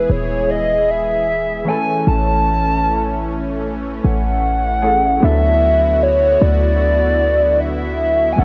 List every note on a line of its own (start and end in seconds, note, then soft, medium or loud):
0.00 1.64 E3 medium
0.00 1.62 G#3 medium
0.00 1.63 B3 medium
0.00 1.64 E4 medium
0.00 1.64 G#4 medium
0.00 0.13 B4 medium
0.00 1.65 B4 medium
0.10 1.63 D#1 loud
0.10 0.52 C#5 loud
0.50 0.92 D#5 loud
0.90 1.70 E5 loud
1.65 4.78 E3 medium
1.65 5.19 E3 medium
1.65 4.79 A3 medium
1.65 5.19 A3 medium
1.65 5.19 C#4 medium
1.65 4.79 C#4 medium
1.65 2.07 G#5 loud
1.69 4.80 E4 medium
1.69 4.80 A4 medium
2.07 4.00 A1 loud
2.07 3.61 A5 loud
4.04 5.19 A1 loud
4.04 5.26 F#5 loud
4.82 5.22 A3 soft
4.82 5.23 C#4 soft
4.82 5.23 E4 soft
4.82 5.22 G#4 medium
4.82 5.23 A4 medium
5.20 6.37 D2 loud
5.20 8.35 D3 medium
5.20 8.33 F#3 medium
5.20 8.34 B3 medium
5.20 8.35 B3 medium
5.20 8.34 D4 medium
5.20 8.44 E4 medium
5.20 8.35 E4 medium
5.20 8.35 F#4 medium
5.24 8.36 A4 medium
5.24 6.02 E5 loud
6.03 6.44 C#5 medium
6.42 8.35 D2 loud
6.42 7.62 D5 loud
7.60 8.34 E5 loud
8.32 8.44 F#3 medium
8.32 8.40 G#5 medium
8.37 8.44 F#1 loud
8.37 8.44 F#3 medium
8.37 8.44 A3 medium
8.37 8.44 C#4 medium
8.37 8.44 E4 medium
8.37 8.44 A4 medium
8.37 8.44 F#5 loud
8.41 8.44 A4 medium